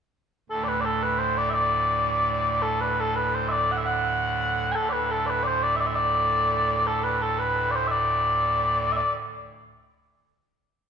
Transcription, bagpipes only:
0.50 0.64 A4 medium
0.64 0.68 D5 medium
0.68 0.81 B4 medium
0.81 0.85 D5 medium
0.85 1.03 A4 medium
1.03 1.19 B4 medium
1.19 1.37 C5 medium
1.37 1.50 D5 medium
1.50 1.54 E5 medium
1.54 2.62 D5 medium
2.62 2.81 A4 medium
2.81 3.00 B4 medium
3.00 3.16 A4 medium
3.16 3.34 B4 medium
3.34 3.48 C5 medium
3.48 3.72 D5 medium
3.48 3.52 E5 medium
3.72 3.78 F#5 medium
3.78 3.86 E5 medium
3.86 4.72 F#5 medium
4.72 4.89 A4 medium
4.72 4.75 G#5 medium
4.89 5.11 B4 medium
4.89 4.92 D5 medium
5.11 5.26 A4 medium
5.26 5.43 B4 medium
5.26 5.30 D5 medium
5.43 5.63 C5 medium
5.43 5.47 D5 medium
5.63 5.76 D5 medium
5.76 5.80 E5 medium
5.80 5.86 D5 medium
5.86 5.96 E5 medium
5.96 6.87 D5 medium
6.87 7.04 A4 medium
7.04 7.22 B4 medium
7.22 7.39 A4 medium
7.39 7.71 B4 medium
7.71 7.75 D5 medium
7.75 7.87 C5 medium
7.87 7.91 E5 medium
7.91 8.92 D5 medium
8.92 8.97 E5 medium
8.97 9.13 D5 medium

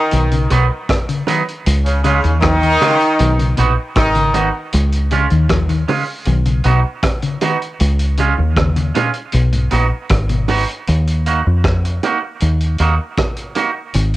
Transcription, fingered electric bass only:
0.13 0.48 B1 medium
0.51 0.69 B1 medium
1.67 2.20 C#2 loud
2.25 2.77 D#2 medium
3.20 3.55 B1 loud
3.59 3.76 A#1 medium
3.96 4.50 G#1 medium
4.74 5.27 C#2 loud
5.32 5.84 D#2 medium
6.27 6.62 B1 loud
6.65 6.83 B1 medium
7.81 8.34 C#2 loud
8.39 8.92 D#2 medium
9.34 9.69 B1 loud
9.73 9.90 A#1 medium
10.11 10.65 G#1 loud
10.89 11.42 D#2 loud
11.47 11.99 F2 medium
12.42 12.77 D#2 loud
12.80 12.98 D#2 medium
13.95 14.17 G#1 loud

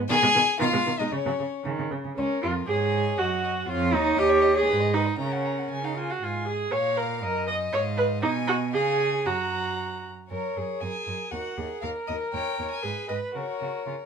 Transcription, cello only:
0.09 0.14 B2 loud
0.23 0.28 B2 medium
0.36 0.41 B2 medium
0.61 0.66 B2 medium
0.74 0.79 B2 medium
0.87 0.92 B2 medium
1.00 1.05 B2 medium
1.12 1.17 C#3 medium
1.26 1.31 C#3 soft
1.40 1.45 C#3 soft
1.66 1.71 C#3 medium
1.79 1.84 C#3 medium
1.92 1.97 C#3 medium
2.05 2.10 C#3 medium
2.18 2.26 C#2 medium
2.43 2.67 F2 medium
2.67 3.17 G#2 medium
3.19 3.67 F#2 medium
3.68 3.95 F2 medium
3.94 4.18 D#2 medium
4.19 4.63 D#2 medium
4.69 5.14 G#2 medium
5.19 5.65 C#3 medium
5.71 6.17 C#3 medium
6.22 6.70 G#2 medium
6.73 7.25 A#2 medium
7.23 7.73 F#2 medium
7.74 8.25 G#2 medium
8.24 8.76 B2 medium
8.74 9.27 C#3 medium
9.26 10.11 F#2 medium
10.31 10.39 F#2 medium
10.57 10.65 F#2 soft
10.82 10.90 F#2 medium
11.07 11.15 F#2 medium
11.33 11.41 D#2 medium
11.58 11.66 D#2 medium
11.83 11.91 D#2 medium
12.10 12.18 D#2 medium
12.34 12.42 D#2 medium
12.59 12.67 D#2 medium
12.84 12.92 G#2 medium
13.10 13.18 G#2 medium
13.36 13.44 C#3 medium
13.61 13.69 C#3 soft
13.87 13.95 C#3 soft

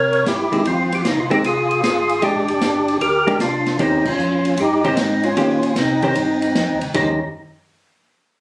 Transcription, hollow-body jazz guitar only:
0.52 0.64 D#3 medium
0.52 0.64 G#3 medium
0.52 0.64 C4 medium
1.30 1.42 D#3 medium
1.30 1.42 G#3 medium
1.30 1.43 C4 medium
2.22 2.46 G#3 medium
2.22 2.46 D4 medium
2.22 2.46 G4 medium
3.27 3.39 G#3 medium
3.27 3.39 D4 medium
3.27 3.39 G4 medium
3.79 4.03 D#3 medium
3.79 4.03 C#4 medium
3.79 4.04 G4 medium
3.79 4.04 C5 medium
4.84 4.96 D#3 medium
4.84 4.96 C#4 medium
4.84 4.97 G4 medium
4.84 4.97 C5 medium
5.37 5.61 D#3 medium
5.37 5.61 C#4 medium
5.37 5.61 G4 medium
5.37 5.61 C5 medium
6.03 6.15 D#3 medium
6.03 6.15 C#4 medium
6.03 6.15 G4 medium
6.03 6.15 C5 medium
6.94 7.18 D#3 medium
6.94 7.18 C#4 medium
6.94 7.19 G4 medium
6.94 7.19 C5 medium

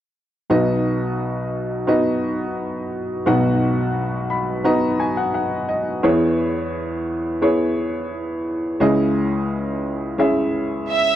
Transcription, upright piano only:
0.50 3.22 B1 soft
0.50 3.22 B2 soft
0.50 1.80 B3 medium
0.50 1.80 D#4 medium
0.50 1.80 F#4 medium
0.50 1.80 D#5 medium
1.87 3.18 B3 medium
1.87 3.18 D#4 medium
1.87 3.18 F#4 medium
1.87 3.18 D#5 medium
3.26 5.99 B1 medium
3.26 5.99 B2 medium
3.26 4.56 B3 medium
3.26 4.57 D#4 medium
3.26 4.57 F#4 medium
3.26 4.57 F#5 medium
4.30 4.62 B5 medium
4.64 5.95 B3 medium
4.64 5.95 D#4 medium
4.64 5.95 F#4 medium
4.64 5.67 D#5 medium
4.64 4.97 A#5 medium
5.00 5.16 G#5 soft
5.17 5.33 F#5 medium
5.34 5.66 F#5 medium
5.69 6.01 D#5 medium
6.03 8.76 E2 medium
6.03 8.76 E3 medium
6.03 7.33 B3 medium
6.03 7.34 E4 medium
6.03 7.34 G#4 medium
6.03 7.34 C#5 medium
7.42 8.72 B3 medium
7.42 8.72 E4 medium
7.42 8.72 G#4 medium
7.42 8.72 C#5 medium
8.80 11.16 C#2 medium
8.80 11.16 C#3 soft
8.80 10.11 C#4 medium
8.80 10.11 E4 medium
8.80 10.11 G#4 medium
8.80 10.11 D#5 medium
10.18 11.16 C#4 medium
10.18 11.16 E4 medium
10.18 11.16 G#4 medium
10.18 11.16 E5 medium

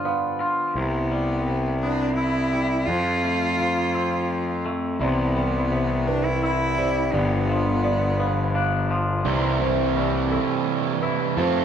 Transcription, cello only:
0.77 1.79 B3 medium
1.81 2.15 D4 medium
2.15 2.88 E4 medium
2.86 4.64 F4 medium
5.02 6.09 B3 medium
6.07 6.26 D4 medium
6.25 6.42 E4 medium
6.44 7.15 E4 medium
7.14 8.91 B3 medium

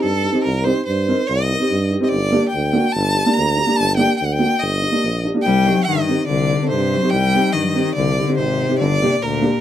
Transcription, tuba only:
0.04 0.29 G2 medium
0.46 0.71 C2 loud
0.88 1.13 G2 medium
1.30 1.54 C2 loud
1.71 1.96 G2 medium
2.12 2.37 G1 medium
2.54 2.79 D2 medium
2.95 3.21 G1 loud
3.37 3.62 D2 medium
3.79 4.04 G1 loud
4.21 4.46 D2 medium
4.62 4.87 G1 medium
5.04 5.29 A#1 medium
5.47 5.72 C2 loud
5.88 6.13 G2 medium
6.30 6.55 C2 loud
6.72 6.97 G2 medium
7.13 7.38 C2 medium
7.55 7.80 G2 medium
7.97 8.22 C2 loud
8.39 8.64 G#1 medium
8.81 9.06 G1 loud
9.22 9.48 D2 medium

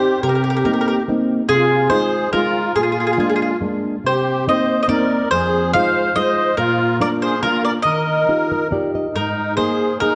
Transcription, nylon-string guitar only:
0.00 0.14 C4 soft
0.00 0.14 D#4 soft
0.00 0.14 G4 medium
0.23 0.63 C3 medium
0.65 0.98 A#3 soft
0.65 0.99 C4 soft
0.65 0.99 D#4 soft
1.08 1.41 A#3 soft
1.08 1.41 C4 soft
1.08 1.42 D#4 medium
1.49 1.90 C3 medium
1.90 2.24 G#3 soft
1.90 2.24 D#4 soft
1.90 2.25 F4 medium
2.33 2.67 G#3 medium
2.33 2.67 D#4 soft
2.33 2.67 F4 medium
2.76 3.17 A#2 soft
3.18 3.52 G#3 soft
3.18 3.52 A#3 soft
3.18 3.52 D4 medium
3.61 3.95 G#3 soft
3.61 3.96 A#3 soft
3.61 3.95 D4 soft
4.04 4.45 C3 soft
4.47 4.81 A#3 soft
4.47 4.81 C4 soft
4.47 4.81 D#4 soft
4.88 5.22 A#3 soft
4.88 5.23 C4 soft
4.88 5.23 D#4 soft
5.32 5.73 F2 medium
5.75 6.08 G#3 soft
5.75 6.08 D#4 soft
5.75 6.08 F4 soft
6.16 6.49 G#3 soft
6.16 6.50 D#4 soft
6.16 6.50 F4 soft
6.58 6.99 A#2 medium
7.00 7.34 A#3 medium
7.00 7.34 D4 soft
7.00 7.35 F4 soft
7.43 7.77 A#3 soft
7.43 7.77 D4 soft
7.43 7.77 F4 medium
7.85 8.27 D#3 soft
8.29 8.63 D#4 soft
8.29 8.63 F4 soft
8.29 8.51 G4 soft
8.52 8.70 A#4 medium
8.71 9.06 D#4 soft
8.71 9.06 F4 soft
8.71 9.07 G4 soft
8.71 8.93 D5 medium
8.95 9.14 D#5 medium
9.15 9.57 G#2 medium
9.58 9.92 A#3 soft
9.58 9.92 D#4 soft
9.58 9.92 G#4 soft
10.01 10.15 A#3 soft
10.01 10.15 D#4 soft
10.01 10.15 G#4 soft

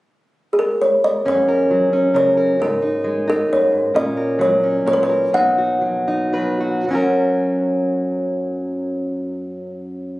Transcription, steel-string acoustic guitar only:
1.25 2.59 F#2 medium
1.25 1.92 C#4 soft
1.48 2.14 A#4 soft
1.71 2.60 F#3 soft
1.93 2.57 C#4 soft
2.14 2.59 C#3 medium
2.14 2.37 A#4 medium
2.37 2.62 A#4 soft
2.59 3.49 G#2 medium
2.59 2.81 D#4 soft
2.82 3.26 D#4 soft
3.04 3.91 G#3 soft
3.28 3.92 D#4 soft
3.49 3.72 F#2 soft
3.72 3.94 G#2 soft
3.94 4.85 A#2 medium
3.94 4.62 C#4 soft
4.17 4.85 A#4 soft
4.39 5.80 F#3 medium
4.64 5.30 C#4 soft
4.86 5.30 A#2 medium
4.86 5.08 A#4 medium
5.10 5.30 A#4 medium
5.33 6.84 B2 medium
5.33 6.07 D#4 soft
5.58 6.59 F#4 soft
5.81 6.32 F#3 soft
6.08 6.84 D#4 soft
6.33 6.84 F#3 medium
6.33 6.84 B4 medium
6.60 6.84 F#4 soft
6.86 10.20 F#2 medium
6.86 10.20 F#3 soft
6.91 10.20 C#4 soft
6.91 10.20 F#4 soft
6.95 10.20 A#4 soft

